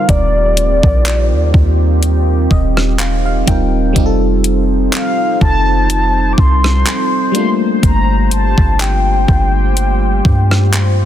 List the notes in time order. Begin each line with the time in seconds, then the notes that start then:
Already playing: D#3 G3 C4 D#4 F4 G4 A#4 F5
0.09 D#1 D5, kick, closed hi-hat
0.57 closed hi-hat
0.83 A#1, kick
1.06 clap, closed hi-hat
1.32 D#2
1.54 D#2, kick
2.03 closed hi-hat
2.51 D#1 D#5, kick
2.77 cross-stick
2.99 F5, clap, closed hi-hat
3.25 F5
3.46 D#1 G3 C4 D#4 F4 A#4 G5, kick, closed hi-hat
3.93 F1 F3 G3 C4 D#4 C5, kick, closed hi-hat
3.98 F4 G4
4.06 A4
4.44 closed hi-hat
4.93 F5, clap, closed hi-hat
5.41 F1 A5, kick
5.90 closed hi-hat
6.33 D6
6.38 C2 C6, kick
6.64 cross-stick
6.86 clap, closed hi-hat
7.32 G3 A#3 D4 F4 G4, closed hi-hat
7.36 A3 F4 C6
7.83 G1 A#5, kick, closed hi-hat
8.31 A5, closed hi-hat
8.58 G1, kick
8.80 G5, clap, closed hi-hat
9.28 G1, kick
9.77 closed hi-hat
10.25 G2, kick
10.51 cross-stick
10.73 clap, closed hi-hat